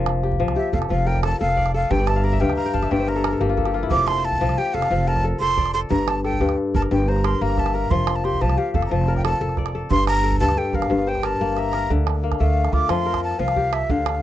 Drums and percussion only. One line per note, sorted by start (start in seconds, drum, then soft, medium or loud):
0.06 calabash click medium
0.23 calabash click soft
0.32 calabash thump soft
0.40 calabash click soft
0.48 calabash click soft
0.73 calabash thump medium
0.82 calabash click soft
1.15 calabash thump medium
1.15 calabash click soft
1.23 calabash click medium
1.49 calabash click soft
1.58 calabash thump medium
1.58 calabash click soft
1.66 calabash click soft
1.91 calabash thump medium
1.91 calabash click soft
1.99 calabash click soft
2.07 calabash click medium
2.16 calabash click soft
2.24 calabash click soft
2.33 calabash thump soft
2.41 calabash click soft
2.50 calabash click soft
2.74 calabash thump medium
2.74 calabash click soft
2.83 calabash click soft
2.99 calabash click soft
3.08 calabash click soft
3.16 calabash click soft
3.24 calabash click medium
3.41 calabash click soft
3.57 calabash thump medium
3.65 calabash click soft
3.74 calabash click soft
3.91 calabash thump medium
4.08 calabash click medium
4.32 calabash thump medium
4.41 calabash click soft
4.49 calabash click soft
4.82 calabash click soft
5.16 calabash thump soft
5.16 calabash click soft
5.49 calabash click soft
5.58 calabash thump medium
5.58 calabash click soft
5.66 calabash click medium
5.91 calabash thump medium
6.08 calabash click medium
6.24 calabash click soft
6.32 calabash thump medium
6.41 calabash click soft
6.49 calabash click soft
6.74 calabash thump medium
6.82 calabash click soft
7.16 calabash click soft
7.24 calabash click medium
7.50 calabash click soft
7.57 calabash thump medium
7.57 calabash click soft
7.66 calabash click medium
7.90 calabash thump medium
8.07 calabash click medium
8.24 calabash click soft
8.33 calabash thump medium
8.41 calabash click soft
8.49 calabash click medium
8.74 calabash thump medium
8.82 calabash click medium
9.16 calabash thump medium
9.16 calabash click soft
9.25 calabash click medium
9.49 calabash click soft
9.57 calabash thump medium
9.57 calabash click soft
9.66 calabash click medium
9.91 calabash thump medium
9.99 calabash click soft
10.07 calabash click medium
10.32 calabash thump medium
10.49 calabash click medium
10.57 calabash click soft
10.66 calabash click soft
10.73 calabash thump medium
10.82 calabash click medium
10.98 calabash click soft
11.07 calabash click soft
11.15 calabash thump soft
11.15 calabash click soft
11.23 calabash click medium
11.31 calabash click soft
11.40 calabash thump soft
11.57 calabash click soft
11.73 calabash click soft
11.90 calabash thump medium
12.07 calabash click medium
12.15 calabash click soft
12.32 calabash thump soft
12.32 calabash click soft
12.65 calabash click soft
12.73 calabash thump medium
12.73 calabash click soft
12.89 calabash click medium
13.14 calabash thump soft
13.14 calabash click medium
13.31 calabash click soft
13.48 calabash click soft
13.56 calabash thump medium
13.73 calabash click medium
13.89 calabash thump medium
14.06 calabash click medium
14.15 calabash click soft